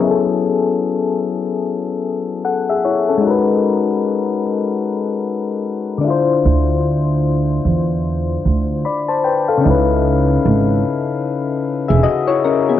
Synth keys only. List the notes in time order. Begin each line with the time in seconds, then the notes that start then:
Already playing: F#3 B3
0.01 C#4 E4
0.07 G#4 A4
2.45 A4 F#5
2.69 G#4 E5
2.85 E4 C#5
3.09 C#4 A4
3.18 G#3 D#4
3.24 F#4 A#4
3.30 B4
5.98 D3 D4
6.04 E4 F4
6.11 C5
8.85 D5 B5
9.08 C5 A5
9.24 B4 G5
9.48 A4 F5
9.57 C#3 C#4
9.64 D#4 E4
9.70 B4
11.88 G#4 E5
12.03 F#4 D#5
12.28 E4 C#5
12.45 C#4 A#4
12.69 B3 G#4